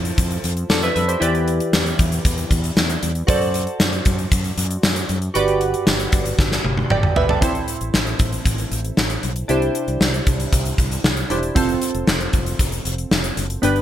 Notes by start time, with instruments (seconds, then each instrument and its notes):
Already playing: fretless electric bass F2, synth keys E4 F4 A4 C5
0.05 closed hi-hat
0.18 fretless electric bass F2, kick, closed hi-hat
0.31 closed hi-hat
0.44 fretless electric bass F2, closed hi-hat
0.57 closed hi-hat
0.70 fretless electric bass F2, synth keys A4 D5, snare, tambourine
0.82 synth keys B4 E5, closed hi-hat
0.95 fretless electric bass F2, synth keys B4 E5, closed hi-hat
1.08 synth keys G4 C5, closed hi-hat
1.20 fretless electric bass E2, synth keys E3 E4 G4 B4 D5, closed hi-hat
1.35 closed hi-hat
1.48 closed hi-hat
1.60 closed hi-hat
1.73 fretless electric bass E2, snare, tambourine
1.86 closed hi-hat
1.99 fretless electric bass E2, kick, closed hi-hat
2.12 closed hi-hat
2.25 fretless electric bass E2, kick, closed hi-hat
2.38 closed hi-hat
2.51 fretless electric bass E2, kick, closed hi-hat
2.64 closed hi-hat
2.77 fretless electric bass E2, snare, tambourine
2.89 closed hi-hat
3.03 fretless electric bass E2, closed hi-hat
3.15 closed hi-hat
3.27 fretless electric bass F#2, synth keys F#4 A4 C5 D5, kick, closed hi-hat
3.41 closed hi-hat
3.54 closed hi-hat
3.67 closed hi-hat
3.80 fretless electric bass F#2, snare, tambourine
3.93 closed hi-hat
4.05 fretless electric bass F#2, kick, closed hi-hat
4.19 closed hi-hat
4.32 fretless electric bass F#2, kick, closed hi-hat
4.44 closed hi-hat
4.58 fretless electric bass F#2, closed hi-hat
4.71 closed hi-hat
4.83 fretless electric bass F#2, snare, tambourine
4.96 closed hi-hat
5.09 fretless electric bass F#2, closed hi-hat
5.22 closed hi-hat
5.34 fretless electric bass G1, synth keys G2 F#4 G4 B4 D5, closed hi-hat
5.48 closed hi-hat
5.61 closed hi-hat
5.74 closed hi-hat
5.87 fretless electric bass G1, snare, tambourine
6.00 closed hi-hat
6.12 fretless electric bass G1, kick, closed hi-hat
6.25 closed hi-hat
6.38 fretless electric bass G1, kick, snare
6.52 snare
6.64 fretless electric bass G1, high tom
6.78 high tom
6.90 fretless electric bass G1, synth keys D5 G5, mid tom
7.03 mid tom
7.16 fretless electric bass G1, synth keys B4 E5, floor tom
7.29 synth keys A4 D5, floor tom
7.41 fretless electric bass A1, synth keys A2 C4 E4 A4 C5, kick, closed hi-hat
7.55 closed hi-hat
7.68 closed hi-hat
7.81 fretless electric bass A1, closed hi-hat
7.94 fretless electric bass A1, snare
8.07 closed hi-hat
8.19 fretless electric bass A1, kick, closed hi-hat
8.32 closed hi-hat
8.45 fretless electric bass A1, kick, closed hi-hat
8.58 closed hi-hat
8.71 fretless electric bass A1, closed hi-hat
8.85 closed hi-hat
8.97 fretless electric bass A1, snare
9.10 closed hi-hat
9.23 fretless electric bass B1, closed hi-hat
9.36 closed hi-hat
9.48 fretless electric bass C2, synth keys C3 D4 E4 G4 C5, closed hi-hat
9.62 closed hi-hat
9.75 closed hi-hat
9.88 fretless electric bass C2, closed hi-hat
10.01 fretless electric bass C2, snare
10.14 closed hi-hat
10.27 fretless electric bass C2, kick, closed hi-hat
10.40 closed hi-hat
10.53 fretless electric bass C2, kick, closed hi-hat
10.65 closed hi-hat
10.78 fretless electric bass C2, kick, closed hi-hat
10.91 closed hi-hat
11.04 fretless electric bass C2, snare
11.17 closed hi-hat
11.30 fretless electric bass E1, synth keys D4 E4 G4 C5, closed hi-hat
11.43 closed hi-hat
11.55 fretless electric bass F1, synth keys C4 F4 A4 C5, kick, closed hi-hat
11.69 closed hi-hat
11.82 closed hi-hat
11.95 fretless electric bass F1, closed hi-hat
12.07 fretless electric bass F1, snare
12.20 closed hi-hat
12.33 fretless electric bass F1, kick, closed hi-hat
12.46 closed hi-hat
12.59 fretless electric bass F1, kick, closed hi-hat
12.72 closed hi-hat
12.85 fretless electric bass F1, closed hi-hat
12.98 closed hi-hat
13.11 fretless electric bass F1, snare
13.24 closed hi-hat
13.37 fretless electric bass F#1, closed hi-hat
13.50 closed hi-hat
13.62 fretless electric bass G1, synth keys G2 B3 D4 G4 B4, closed hi-hat
13.76 closed hi-hat